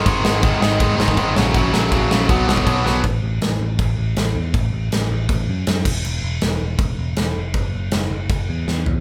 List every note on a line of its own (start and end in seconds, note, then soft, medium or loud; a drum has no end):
0.06 0.23 G#1 loud
0.06 0.23 G#2 loud
0.06 0.24 D#3 loud
0.06 0.24 G#3 loud
0.06 kick loud
0.06 crash medium
0.24 0.42 G#1 loud
0.24 0.41 G#2 medium
0.24 0.42 D#3 medium
0.24 0.42 G#3 medium
0.24 snare loud
0.42 0.61 G#1 medium
0.42 0.60 G#2 loud
0.42 0.61 D#3 loud
0.42 0.61 G#3 medium
0.42 kick loud
0.42 crash medium
0.61 0.79 G#1 loud
0.61 0.78 G#2 medium
0.61 0.79 D#3 loud
0.61 0.79 G#3 loud
0.61 snare loud
0.79 0.98 G#1 medium
0.79 0.96 G#2 medium
0.79 0.97 D#3 medium
0.79 0.97 G#3 loud
0.79 kick loud
0.79 crash medium
0.97 1.16 G#1 medium
0.97 1.16 G#2 medium
0.97 1.16 D#3 loud
0.97 1.17 G#3 loud
0.97 snare loud
1.08 kick medium
1.17 1.35 G#1 loud
1.17 1.35 G#2 medium
1.17 1.35 D#3 loud
1.17 1.35 G#3 loud
1.17 kick medium
1.17 crash medium
1.36 1.54 A#1 medium
1.36 1.53 F#2 loud
1.36 1.53 C#3 medium
1.36 1.53 F#3 loud
1.36 snare loud
1.54 1.72 A#1 loud
1.54 1.71 F#2 loud
1.54 1.72 C#3 loud
1.54 1.72 F#3 loud
1.54 kick loud
1.54 crash medium
1.72 1.91 A#1 medium
1.72 1.90 F#2 medium
1.72 1.91 C#3 medium
1.72 1.91 F#3 loud
1.72 snare loud
1.91 2.10 A#1 medium
1.91 2.09 F#2 medium
1.91 2.10 C#3 loud
1.91 2.10 F#3 medium
1.91 kick loud
1.91 crash medium
2.10 2.28 A#1 medium
2.10 2.28 F#2 loud
2.10 2.28 C#3 loud
2.10 2.29 F#3 loud
2.10 snare loud
2.29 2.47 B1 loud
2.29 2.47 B2 medium
2.29 2.47 F#3 loud
2.29 2.47 B3 loud
2.29 kick loud
2.29 crash medium
2.48 2.66 B1 medium
2.48 2.65 B2 loud
2.48 2.66 F#3 loud
2.48 2.66 B3 loud
2.48 snare loud
2.57 kick medium
2.66 2.84 B1 medium
2.66 2.84 B2 medium
2.66 2.84 F#3 loud
2.66 2.85 B3 medium
2.66 kick medium
2.66 crash medium
2.85 3.03 B1 medium
2.85 3.03 B2 medium
2.85 3.03 F#3 medium
2.85 3.03 B3 medium
2.85 snare medium
3.04 3.21 A1 medium
3.04 kick loud
3.04 crash medium
3.22 3.40 A1 medium
3.41 3.58 A1 medium
3.41 snare loud
3.41 crash medium
3.59 3.77 A1 medium
3.79 3.96 A1 medium
3.79 kick loud
3.79 crash medium
3.97 4.15 A1 medium
4.16 4.34 A1 medium
4.16 snare loud
4.16 crash medium
4.35 4.52 E2 medium
4.54 4.71 A1 medium
4.54 kick loud
4.54 crash medium
4.72 4.90 A1 medium
4.91 5.08 A1 medium
4.91 snare loud
4.91 crash medium
5.11 5.28 A1 medium
5.29 5.46 A1 medium
5.29 kick loud
5.29 crash medium
5.49 5.66 F#2 medium
5.67 5.84 F#2 medium
5.67 snare loud
5.67 crash medium
5.85 6.03 E1 medium
5.85 kick loud
5.85 crash loud
6.05 6.22 E1 loud
6.05 crash medium
6.22 6.40 E1 medium
6.41 6.59 E1 medium
6.41 snare loud
6.41 crash medium
6.61 6.78 E1 medium
6.78 6.96 E1 medium
6.78 kick loud
6.78 crash medium
6.99 7.16 E1 medium
7.16 7.34 E1 medium
7.16 snare loud
7.16 crash medium
7.36 7.53 F1 medium
7.54 7.71 F#1 medium
7.54 kick loud
7.54 crash medium
7.74 7.91 F#1 medium
7.91 8.10 F#1 medium
7.91 snare loud
7.91 crash medium
8.11 8.28 F#1 medium
8.29 8.47 F#1 medium
8.29 kick loud
8.29 crash medium
8.49 8.66 E2 medium
8.68 8.85 E2 medium
8.68 snare medium
8.86 9.00 E2 medium
8.86 floor tom medium